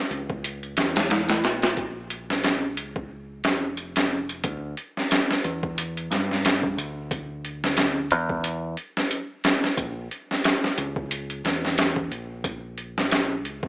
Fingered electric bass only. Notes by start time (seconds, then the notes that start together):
0.11 C#2
0.77 E2
1.44 A#1
2.77 C#2
3.45 F1
4.44 D2
5.45 E2
6.11 G2
6.77 D2
8.11 E2
9.77 A#1
10.78 C#2
11.44 E2
12.11 A#1
13.44 C#2